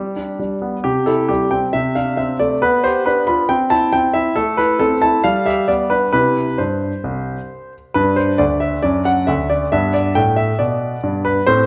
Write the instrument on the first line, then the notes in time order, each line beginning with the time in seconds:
grand piano
Already playing: G3 G4
0.16 D4
0.39 G3
0.62 B3
0.84 C3 G4
1.06 E4 A4
1.29 G3 G4
1.51 C4 G5
1.73 C3 E5
1.95 D4 F5
2.17 C4 E5
2.39 A3 D5
2.62 B3 B4
2.84 G4 C5
3.06 D4 B4
3.27 F4 B5
3.49 C4 G5
3.70 E4 A5
3.93 C4 G5
4.14 E4 E5
4.36 A3 A4
4.57 E4 B4
4.79 C4 A4
5.02 E4 A5
5.24 G3 F5
5.46 G4 E5
5.68 B3 D5
5.90 D4 B4
6.13 C3 E4 G4 B4
6.58 G2 C5
7.04 C2
7.94 G2 D4 B4
8.16 C5
8.38 D2 D5
8.60 E5
8.83 F#2 D4 D5
9.05 F#5
9.27 D2 E5
9.50 D5
9.72 G2 B3 E5
9.94 D5
10.15 A2 G5
10.36 E5
10.59 B2 D5
11.03 G2
11.25 B4
11.47 A2 C4 C5